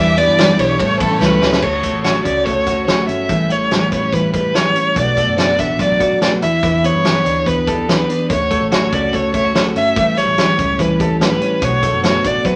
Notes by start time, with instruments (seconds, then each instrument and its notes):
Already playing: picked electric bass E2, steel-string acoustic guitar E3 G3 D4 E4 B4, clean electric guitar G4, string section G4 E5 D6, violin E5
0.16 clean electric guitar B3, steel-string acoustic guitar D4 E4 B4, violin D5, ride, tambourine
0.27 picked electric bass G2
0.37 steel-string acoustic guitar E3 G3 D4 E4 B4, snare, ride, tambourine
0.58 picked electric bass B1, steel-string acoustic guitar D4 E4 B4, clean electric guitar G4, violin C#5, ride, tambourine
0.78 picked electric bass A1, clean electric guitar A2, steel-string acoustic guitar G3 C#4 E4 A4, string section A4 G5 C#6, kick, ride
0.99 picked electric bass A1, steel-string acoustic guitar G3 C#4 E4 A4, clean electric guitar B3, violin A4, kick, ride, tambourine
1.11 clean electric guitar C#4
1.19 picked electric bass C#2, steel-string acoustic guitar A2 E3 G3 C#4 E4 A4, violin B4, snare, tambourine
1.41 picked electric bass C#2, steel-string acoustic guitar G3 C#4 E4 A4, clean electric guitar G4, snare, tambourine
1.53 snare
1.62 picked electric bass D2, steel-string acoustic guitar D3 A3 C#4 F#4, violin C#5, kick, crash
1.82 steel-string acoustic guitar A3 C#4 F#4, kick, closed hi-hat
1.93 picked electric bass A1
2.03 steel-string acoustic guitar D3 A3 C#4 F#4, violin C#5, snare, closed hi-hat
2.24 picked electric bass C#2, steel-string acoustic guitar A3 C#4 F#4, violin D5, kick, closed hi-hat
2.45 steel-string acoustic guitar D3 A3 C#4 F#4, violin C#5, kick, closed hi-hat
2.66 steel-string acoustic guitar A3 C#4 F#4, kick, closed hi-hat
2.87 steel-string acoustic guitar D3 A3 C#4 F#4, violin C#5, snare, closed hi-hat
3.08 picked electric bass G1, steel-string acoustic guitar A3 C#4 F#4, violin E5, closed hi-hat
3.29 picked electric bass A1, steel-string acoustic guitar A2 E3 G3 C#4 G4, kick, closed hi-hat
3.50 steel-string acoustic guitar G3 C#4 G4, violin C#5, closed hi-hat
3.71 steel-string acoustic guitar A2 E3 G3 C#4 G4, snare, closed hi-hat
3.91 picked electric bass A1, steel-string acoustic guitar G3 C#4 G4, clean electric guitar B3, violin C#5, kick, closed hi-hat
4.03 clean electric guitar C#4
4.12 steel-string acoustic guitar E3 G3 C#4 G4, violin B4, kick, closed hi-hat
4.32 steel-string acoustic guitar G3 C#4 G4, violin B4, kick, closed hi-hat
4.53 steel-string acoustic guitar A2 E3 G3 C#4 G4, violin C#5, snare, closed hi-hat
4.74 steel-string acoustic guitar G3 C#4 G4, closed hi-hat
4.94 picked electric bass B1, steel-string acoustic guitar B2 F#3 A3 D4 F#4, violin D5, kick, closed hi-hat
5.16 steel-string acoustic guitar A3 D4 F#4, kick, closed hi-hat
5.28 picked electric bass F#1
5.37 steel-string acoustic guitar B2 F#3 A3 D4 F#4, violin D5, snare, closed hi-hat
5.57 picked electric bass A1, steel-string acoustic guitar A3 D4 F#4, violin E5, kick, closed hi-hat
5.77 steel-string acoustic guitar F#3 A3 D4 F#4, violin D5, kick, closed hi-hat
5.99 steel-string acoustic guitar A3 D4 F#4, kick, closed hi-hat
6.20 steel-string acoustic guitar B2 F#3 A3 D4 F#4, violin D5, snare, closed hi-hat
6.41 picked electric bass E2, clean electric guitar E3, steel-string acoustic guitar B3 D4 G4, violin E5, closed hi-hat
6.62 picked electric bass E2, steel-string acoustic guitar E3 B3 D4 G4, kick, closed hi-hat
6.83 steel-string acoustic guitar B3 D4 G4, violin C#5, closed hi-hat
6.94 picked electric bass G2
7.03 steel-string acoustic guitar E3 B3 D4 G4, snare, closed hi-hat
7.25 picked electric bass D2, steel-string acoustic guitar B3 D4 G4, closed hi-hat
7.45 steel-string acoustic guitar E3 B3 D4 G4, violin B4, kick, closed hi-hat
7.67 steel-string acoustic guitar B3 D4 G4, violin A4, kick, closed hi-hat
7.88 steel-string acoustic guitar E3 B3 D4 G4, violin B4, snare, closed hi-hat
8.08 steel-string acoustic guitar B3 D4 G4, closed hi-hat
8.29 picked electric bass D2, steel-string acoustic guitar D3 A3 C#4 F#4, violin C#5, kick, closed hi-hat
8.50 steel-string acoustic guitar A3 C#4 F#4, kick, closed hi-hat
8.61 picked electric bass A1
8.70 steel-string acoustic guitar D3 A3 C#4 F#4, violin C#5, snare, closed hi-hat
8.91 picked electric bass C#2, steel-string acoustic guitar A3 C#4 F#4, violin D5, kick, closed hi-hat
9.12 steel-string acoustic guitar D3 A3 C#4 F#4, violin C#5, kick, closed hi-hat
9.33 steel-string acoustic guitar A3 C#4 F#4, clean electric guitar E4, violin C#5, kick, closed hi-hat
9.45 clean electric guitar F#4
9.53 steel-string acoustic guitar D3 A3 C#4 F#4, violin C#5, snare, closed hi-hat
9.74 picked electric bass G1, steel-string acoustic guitar A3 C#4 F#4, violin E5, closed hi-hat
9.95 picked electric bass A1, steel-string acoustic guitar A2 E3 G3 C#4 G4, kick, closed hi-hat
10.15 steel-string acoustic guitar G3 C#4 G4, violin C#5, snare, closed hi-hat
10.27 picked electric bass A1
10.37 steel-string acoustic guitar A2 E3 G3 C#4 G4, snare, closed hi-hat
10.57 picked electric bass C#2, steel-string acoustic guitar G3 C#4 G4, kick, closed hi-hat
10.78 steel-string acoustic guitar E3 G3 C#4 G4, violin B4, kick, closed hi-hat
10.99 steel-string acoustic guitar G3 C#4 G4, violin A4, kick, closed hi-hat
11.20 steel-string acoustic guitar A2 E3 G3 C#4 G4, violin B4, snare, closed hi-hat
11.40 steel-string acoustic guitar G3 C#4 G4, closed hi-hat
11.61 picked electric bass B1, steel-string acoustic guitar B2 F#3 A3 D4 F#4, violin C#5, kick, closed hi-hat
11.82 steel-string acoustic guitar A3 D4 F#4, kick, closed hi-hat
11.93 picked electric bass F#1
12.03 steel-string acoustic guitar B2 F#3 A3 D4 F#4, violin C#5, snare, closed hi-hat
12.24 picked electric bass A1, steel-string acoustic guitar A3 D4 F#4, violin D5, kick, closed hi-hat
12.44 steel-string acoustic guitar F#3 A3 D4 F#4, violin B4, kick, closed hi-hat